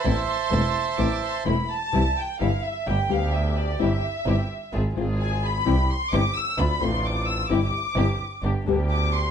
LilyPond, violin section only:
\new Staff \with { instrumentName = "Violin section" } { \time 4/4 \key a \minor \tempo 4 = 129 << { c'''2 d'''8 c'''8 b''8 a''8 | \key c \major r1 | r1 | r1 |
r1 | } \\ { r2. b''8 a''8~ | a''8 g''8 f''8 e''8 g''8 f''8 e''8 d''8 | e''2 r4 aes''8 b''8~ | b''8 c'''8 d'''8 e'''8 b''8 c'''8 d'''8 e'''8 |
d'''2 r4 d'''8 c'''8 | } >> }